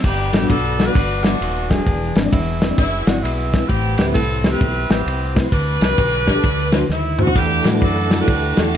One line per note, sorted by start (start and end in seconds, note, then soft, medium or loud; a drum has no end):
0.04 0.29 G1 loud
0.04 0.75 G2 medium
0.04 0.92 B3 medium
0.04 0.50 D4 medium
0.04 0.33 G4 loud
0.04 kick loud
0.04 crash medium
0.32 0.47 A1 medium
0.32 0.38 G3 medium
0.32 0.38 B3 medium
0.32 0.38 D4 medium
0.32 0.38 F#4 medium
0.32 0.49 G4 medium
0.32 0.38 A4 medium
0.32 snare loud
0.32 ride medium
0.41 0.53 G3 medium
0.41 0.53 B3 medium
0.41 0.53 D4 medium
0.41 0.53 F#4 medium
0.41 0.53 A4 medium
0.49 0.88 B1 medium
0.49 0.86 D4 medium
0.49 0.86 F#4 medium
0.49 0.87 A4 loud
0.49 kick loud
0.49 ride medium
0.78 0.84 G3 medium
0.78 0.84 B3 medium
0.78 0.84 D4 medium
0.78 0.84 F#4 medium
0.78 0.84 A4 medium
0.78 snare loud
0.78 ride medium
0.85 0.98 G3 medium
0.85 0.98 B3 medium
0.85 0.99 D4 medium
0.85 1.70 D4 medium
0.85 1.23 F#4 medium
0.85 0.99 F#4 medium
0.85 1.24 B4 loud
0.85 0.99 B4 medium
0.95 1.34 G1 loud
0.95 kick loud
0.95 ride medium
1.24 1.35 G3 medium
1.24 1.83 A3 medium
1.24 1.35 B3 medium
1.24 1.70 B3 medium
1.24 1.35 D4 medium
1.24 1.70 F#4 loud
1.24 1.35 F#4 medium
1.24 1.35 B4 medium
1.24 snare loud
1.24 ride medium
1.41 1.80 D#1 medium
1.41 ride medium
1.70 1.80 G3 medium
1.70 1.80 B3 medium
1.70 2.32 B3 medium
1.70 1.81 D4 medium
1.70 2.59 D4 medium
1.70 1.81 F#4 medium
1.70 2.16 G#4 loud
1.70 1.81 A4 medium
1.70 kick loud
1.70 snare loud
1.70 ride medium
1.86 2.12 E1 loud
1.86 2.58 E3 medium
1.86 kick medium
1.86 ride medium
2.15 2.30 G#1 medium
2.15 2.21 G#3 medium
2.15 2.21 C4 medium
2.15 2.21 D4 medium
2.15 2.21 E4 medium
2.15 2.22 B4 medium
2.15 snare loud
2.15 ride medium
2.24 2.36 G#3 medium
2.24 2.36 C4 medium
2.24 2.36 D4 medium
2.24 2.36 E4 medium
2.24 2.36 D5 medium
2.32 2.71 E1 loud
2.32 2.77 G#3 medium
2.32 2.77 B3 medium
2.32 2.75 E4 loud
2.32 kick loud
2.32 ride medium
2.61 2.67 G#3 medium
2.61 2.67 C4 medium
2.61 2.67 D4 medium
2.61 2.67 E4 medium
2.61 2.67 B4 medium
2.61 snare loud
2.61 ride medium
2.69 2.81 G#3 medium
2.69 2.82 C4 medium
2.69 2.82 D4 medium
2.69 2.82 E4 medium
2.69 2.82 D5 medium
2.78 3.03 F#1 loud
2.78 3.23 G#3 medium
2.78 3.23 B3 medium
2.78 3.05 E4 loud
2.78 kick loud
2.78 ride medium
3.07 3.21 G#1 medium
3.07 3.18 G#3 medium
3.07 3.18 C4 medium
3.07 3.18 D4 medium
3.07 3.18 E4 medium
3.07 3.23 F#4 medium
3.07 3.18 D5 medium
3.07 snare loud
3.07 ride medium
3.23 3.62 B1 medium
3.23 3.66 G#3 medium
3.23 3.67 B3 medium
3.23 3.69 E4 medium
3.23 ride medium
3.53 3.63 G#3 medium
3.53 3.63 C4 medium
3.53 3.64 D4 medium
3.53 3.64 E4 medium
3.53 3.64 B4 medium
3.53 kick loud
3.53 snare loud
3.53 ride medium
3.69 3.95 A1 loud
3.69 4.41 A2 medium
3.69 4.57 B3 medium
3.69 4.13 C4 medium
3.69 3.96 G4 loud
3.69 kick medium
3.69 ride medium
3.98 4.13 D2 medium
3.98 4.04 A3 medium
3.98 4.04 C4 medium
3.98 4.04 E4 medium
3.98 4.05 G4 medium
3.98 4.04 G4 medium
3.98 4.04 B4 medium
3.98 snare loud
3.98 ride medium
4.06 4.18 A3 medium
4.06 4.18 C4 medium
4.06 4.18 E4 medium
4.06 4.19 G4 medium
4.06 4.19 B4 medium
4.14 4.54 C2 medium
4.14 4.89 C4 medium
4.14 4.50 E4 medium
4.14 4.50 A4 loud
4.14 kick loud
4.14 ride medium
4.44 4.50 A3 medium
4.44 4.50 C4 medium
4.44 4.50 E4 medium
4.44 4.50 G4 medium
4.44 4.50 B4 medium
4.44 snare loud
4.44 ride medium
4.51 4.64 A3 medium
4.51 4.64 C4 medium
4.51 5.40 E4 medium
4.51 4.64 E4 medium
4.51 4.90 G4 medium
4.51 4.64 G4 medium
4.51 4.65 A4 medium
4.51 4.90 B4 loud
4.61 4.86 B1 loud
4.61 kick loud
4.61 ride medium
4.90 5.04 A1 medium
4.90 5.00 A3 medium
4.90 5.49 B3 medium
4.90 5.00 C4 medium
4.90 5.48 C4 medium
4.90 5.01 E4 medium
4.90 5.01 G4 medium
4.90 5.37 G4 medium
4.90 5.01 B4 medium
4.90 snare loud
4.90 ride medium
5.06 5.45 C2 loud
5.06 ride medium
5.35 5.46 A3 medium
5.35 5.46 C4 medium
5.35 5.46 E4 medium
5.35 5.46 G4 medium
5.35 5.46 B4 medium
5.35 kick loud
5.35 snare loud
5.35 ride medium
5.52 5.77 D2 loud
5.52 6.24 D3 medium
5.52 6.86 D4 loud
5.52 6.86 G4 medium
5.52 6.86 B4 loud
5.52 kick loud
5.52 ride medium
5.81 5.95 C2 loud
5.81 5.87 D4 medium
5.81 5.87 G4 medium
5.81 5.87 B4 medium
5.81 snare loud
5.81 ride medium
5.90 6.02 D4 medium
5.90 6.02 G4 medium
5.90 6.02 B4 medium
5.98 6.37 B1 medium
5.98 kick loud
5.98 ride medium
6.27 6.32 D4 medium
6.27 6.33 G4 medium
6.27 6.33 D5 medium
6.27 kick medium
6.27 snare loud
6.27 ride medium
6.35 6.43 D4 medium
6.35 6.44 G4 medium
6.35 6.44 A4 medium
6.43 6.83 D2 loud
6.43 7.15 D3 medium
6.43 kick loud
6.43 ride medium
6.72 6.83 A3 medium
6.72 6.83 D4 medium
6.72 6.83 E4 medium
6.72 6.84 F#4 medium
6.72 6.84 C5 loud
6.72 snare loud
6.72 ride medium
6.89 7.29 D#2 loud
6.89 7.20 E4 medium
6.89 snare medium
7.19 7.29 A3 medium
7.19 7.29 D4 medium
7.19 7.29 E4 medium
7.19 7.30 F#4 medium
7.19 7.37 F#4 loud
7.19 7.30 C5 medium
7.19 mid tom medium
7.27 floor tom loud
7.35 7.61 E2 loud
7.35 8.07 E3 medium
7.35 8.77 A3 medium
7.35 8.23 B3 medium
7.35 7.68 D4 medium
7.35 8.77 D4 medium
7.35 8.77 E4 medium
7.35 7.68 G4 loud
7.35 8.77 A4 medium
7.35 8.77 F#5 medium
7.35 kick loud
7.35 splash medium
7.64 7.79 A2 medium
7.64 7.70 G3 medium
7.64 7.70 D4 medium
7.64 7.70 E4 medium
7.64 7.71 F#4 medium
7.64 7.70 A4 medium
7.64 snare loud
7.64 ride medium
7.72 7.84 G3 medium
7.72 7.85 D4 medium
7.72 7.85 E4 medium
7.72 7.85 F#4 medium
7.72 7.85 B4 medium
7.81 8.21 F#2 loud
7.81 8.20 D4 medium
7.81 8.57 F#4 medium
7.81 8.20 A4 loud
7.81 kick loud
7.81 ride medium
8.11 8.16 G3 medium
8.11 8.16 D4 medium
8.11 8.16 E4 medium
8.11 8.16 F#4 medium
8.11 8.17 A4 medium
8.11 snare loud
8.11 ride medium
8.19 8.31 G3 medium
8.19 8.31 D4 medium
8.19 8.56 D4 medium
8.19 8.31 E4 medium
8.19 8.31 F#4 medium
8.19 8.77 G4 medium
8.19 8.32 A4 medium
8.19 8.58 B4 loud
8.28 8.53 D2 loud
8.28 kick loud
8.28 ride medium
8.57 8.76 E2 medium
8.57 8.67 G3 medium
8.57 8.77 A3 medium
8.57 8.67 D4 medium
8.57 8.77 D4 medium
8.57 8.67 E4 medium
8.57 8.67 F#4 medium
8.57 8.77 F#4 medium
8.57 8.68 A4 medium
8.57 snare loud
8.57 ride medium
8.74 8.77 G#1 loud